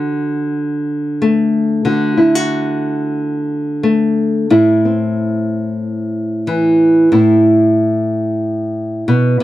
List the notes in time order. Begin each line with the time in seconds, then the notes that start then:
Already playing: D3 F#4
1.22 A3
1.85 D3 F#4
2.17 E4
2.35 F#4
3.83 A3
4.50 A2 E4
4.85 C4
6.47 E3
7.12 A2 E4
9.08 B2
9.40 C3